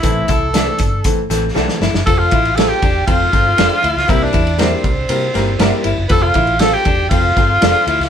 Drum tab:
RD |----------------|x-xxx-x-x-x-x-xx|x-xxx-x-x-x-x-x-|x-xxx-x-x-x-x-xx|
HH |x-x-x-x-x-x-----|----------------|----------------|----------------|
SD |----o-----o-oooo|----o-----o-o--o|----o-----o-o---|----o-----o-o--o|
BD |o-o---o-o-------|o-o---o-o-o-----|o-o---o---------|o-o---o-o-o-----|